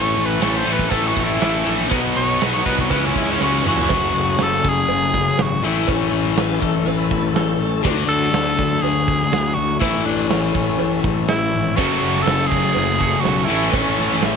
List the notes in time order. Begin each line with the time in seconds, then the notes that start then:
Already playing: A1 A2 E3 A3 C#4 A4 C#5
0.17 A1, ride
0.26 B4
0.40 A1 A2 E3 A3 C#4 A4 C#5, snare, ride, cowbell
0.58 C5
0.66 A1 A2 E3 A3 C#4 A4, ride
0.73 B4
0.79 kick, snare
0.90 A1 A2 E3 A3 C#4 A4, kick, ride, cowbell
1.07 F#4
1.16 A1, kick, ride
1.24 E4
1.41 A1 A2 E3 A3 C#4 A4, snare, ride, cowbell
1.65 A#1 A2 E3 A3 C#4 A4, snare, ride
1.90 B1 B2 F#3 B3 D#4 F#4 B4, kick, ride, cowbell
2.16 B1 C#5, ride
2.40 B1 B2 F#3 B3 D#4 F#4, snare, ride, cowbell
2.54 C#5
2.64 C2 B2 F#3 B3 D#4 F#4 B4, kick, ride
2.79 F#4, kick
2.89 C#2 C#3 E3 G#3 C#4 E4 G#4 B4, kick, ride, cowbell
3.06 F#4
3.16 C#2 E4, kick, ride
3.30 C#4
3.38 C#2 C#3 E3 G#3 C#4 E4, snare, cowbell
3.43 F#4
3.57 B3 C4
3.64 E2 C#3 E3 G#3 C#4 D4 E4, mid tom
3.68 F4 F#4
3.72 G4 A4
3.78 B4 C5, floor tom
3.82 D5 E5
3.89 F#1 F#2 C#3 F#3 A3 G#4 F5, kick, open hi-hat, cowbell
3.94 F#3
4.14 F#1, open hi-hat
4.39 F#1, snare, open hi-hat, cowbell
4.43 A4
4.64 F#1, kick, open hi-hat
4.69 G#4
4.88 F#1, open hi-hat, cowbell
5.13 kick, open hi-hat
5.27 snare
5.38 G#1, snare, open hi-hat, cowbell
5.42 F#4
5.62 A1 A2 E3 A3 C#4 E4 A4, open hi-hat
5.87 A1 C#4, kick, open hi-hat, cowbell
6.12 A1, open hi-hat
6.26 snare
6.37 A1 B4, snare, open hi-hat, cowbell
6.62 A1 A4, kick, open hi-hat
6.86 A1 B4, open hi-hat, cowbell
7.11 A1, kick, open hi-hat
7.34 A1 A4, snare, open hi-hat, cowbell
7.60 A1, open hi-hat
7.83 D2 D3 F#3 A3 D4, kick, crash, cowbell
8.07 D2 A4, open hi-hat
8.22 snare
8.33 D2, snare, open hi-hat, cowbell
8.59 D2, kick, open hi-hat
8.82 D2 G#4, open hi-hat, cowbell
9.08 kick, open hi-hat
9.22 snare
9.32 D2, snare, open hi-hat, cowbell
9.54 D2 F#4, open hi-hat
9.80 A1 A2 E3 A3 C#4 E4 A4, kick, open hi-hat, cowbell
10.05 A1 D4, open hi-hat
10.29 A1 C#4, snare, open hi-hat, cowbell
10.55 A1, kick, open hi-hat
10.79 A1, open hi-hat, cowbell
11.04 A1, kick, open hi-hat
11.28 A1 E4, snare, open hi-hat, cowbell
11.54 G#1, open hi-hat
11.76 F#1 F#2 C#3 F#3 A3 C#4 F#4 A4, kick, crash, cowbell
12.03 F#1, open hi-hat
12.16 snare
12.22 A4, cowbell
12.27 F#1, snare, open hi-hat
12.47 G#4
12.52 F#1, kick, open hi-hat
12.75 F#1, open hi-hat, cowbell
12.98 F#2 C#3 F#3 A3 C#4 A4, kick, open hi-hat
13.21 F#2 C#3 F#3 A3 F#4, cowbell
13.25 B1 C#4 A4, snare, open hi-hat
13.45 A2 E3 A3 E4, open hi-hat
13.49 A1 E3 C#4 A4
13.72 A1 C#4, kick, open hi-hat, cowbell
13.98 A1, open hi-hat
14.10 snare
14.21 A1, snare, open hi-hat, cowbell
14.25 E5